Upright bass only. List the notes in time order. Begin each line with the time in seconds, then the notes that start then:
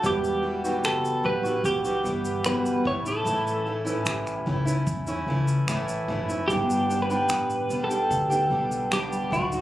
0.03 E1
0.83 F#1
1.24 A1
1.64 B1
2.04 G1
2.85 A1
3.25 A1
4.06 A1
4.47 C#2
4.87 E2
5.26 C#2
5.67 A1
6.08 F#1
6.49 G1
7.29 A1
7.70 B1
8.10 D2
8.50 B1
9.32 D2